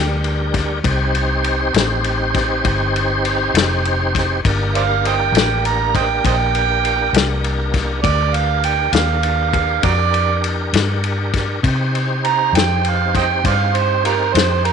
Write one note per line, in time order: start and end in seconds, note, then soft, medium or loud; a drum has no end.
0.00 0.81 D2 medium
0.00 0.79 G3 medium
0.00 0.79 D4 medium
0.00 0.79 G4 medium
0.00 0.79 A#4 medium
0.00 0.20 G5 loud
0.24 ride medium
0.54 kick medium
0.54 snare soft
0.54 ride medium
0.83 1.71 C2 medium
0.83 4.40 C4 medium
0.83 4.40 D#4 medium
0.83 4.41 G4 medium
0.83 4.40 C5 medium
0.83 kick loud
0.83 ride medium
1.15 ride medium
1.44 ride medium
1.74 2.61 A1 medium
1.74 snare loud
1.74 ride medium
2.04 ride medium
2.35 kick medium
2.35 snare soft
2.35 ride medium
2.64 3.51 G1 medium
2.64 kick loud
2.64 ride medium
2.96 ride medium
3.25 ride medium
3.54 4.41 F1 medium
3.54 snare loud
3.54 ride medium
3.85 ride medium
4.15 kick medium
4.15 snare soft
4.15 ride medium
4.45 5.31 G1 medium
4.45 8.00 A#3 medium
4.45 8.01 D4 medium
4.45 8.00 G4 medium
4.45 8.01 A#4 medium
4.45 kick loud
4.45 ride medium
4.75 4.83 C5 medium
4.75 4.82 D5 medium
4.75 5.04 F5 loud
4.75 ride medium
5.05 5.14 C5 medium
5.05 5.16 D#5 medium
5.05 5.67 G5 medium
5.05 ride medium
5.32 6.20 A1 medium
5.32 ride medium
5.37 snare loud
5.65 5.94 A#5 medium
5.65 ride medium
5.95 6.04 C5 medium
5.95 6.05 D#5 medium
5.95 6.24 G5 medium
5.95 kick medium
5.95 ride medium
6.24 7.11 A#1 medium
6.24 6.34 C5 medium
6.24 6.35 D#5 medium
6.24 7.41 G5 loud
6.24 kick loud
6.24 ride medium
6.55 ride medium
6.85 ride medium
7.13 8.00 C2 medium
7.13 snare loud
7.13 ride medium
7.44 ride medium
7.74 kick medium
7.74 snare soft
7.74 ride medium
8.03 8.91 D2 medium
8.03 11.60 D4 medium
8.03 11.60 G4 medium
8.03 11.61 A#4 medium
8.03 8.36 D5 loud
8.03 kick loud
8.03 ride medium
8.34 8.63 F5 medium
8.34 ride medium
8.64 8.95 G5 medium
8.64 ride medium
8.93 9.80 D#2 medium
8.93 9.81 F5 medium
8.93 snare loud
8.93 ride medium
9.23 ride medium
9.53 kick medium
9.53 ride medium
9.83 10.71 F2 medium
9.83 9.93 F#4 medium
9.83 9.91 A#4 medium
9.83 10.42 D5 loud
9.83 kick loud
9.83 ride medium
10.14 ride medium
10.44 ride medium
10.73 11.61 G2 medium
10.73 snare loud
10.73 ride medium
11.04 ride medium
11.34 kick medium
11.34 snare soft
11.34 ride medium
11.63 12.51 C3 medium
11.63 14.73 C4 medium
11.63 14.73 D#4 medium
11.63 14.73 G4 medium
11.63 14.73 C5 medium
11.63 kick loud
11.63 ride medium
11.95 ride medium
12.24 12.54 A#5 loud
12.24 ride medium
12.53 13.41 F2 medium
12.53 12.90 G5 medium
12.53 ride medium
12.57 snare loud
12.85 ride medium
12.89 13.16 F5 medium
13.15 13.25 C5 medium
13.15 13.25 D#5 medium
13.15 13.45 G5 medium
13.15 kick medium
13.15 snare soft
13.15 ride medium
13.44 14.32 G2 medium
13.44 13.53 C5 medium
13.44 13.55 D5 medium
13.44 13.78 F5 loud
13.44 kick loud
13.44 ride medium
13.75 14.05 C5 medium
13.75 ride medium
14.05 14.14 F4 medium
14.05 14.14 G4 medium
14.05 14.35 A#4 medium
14.05 ride medium
14.33 14.73 F2 medium
14.33 14.63 C5 loud
14.33 ride medium
14.37 snare loud
14.65 14.73 A#4 loud
14.65 ride medium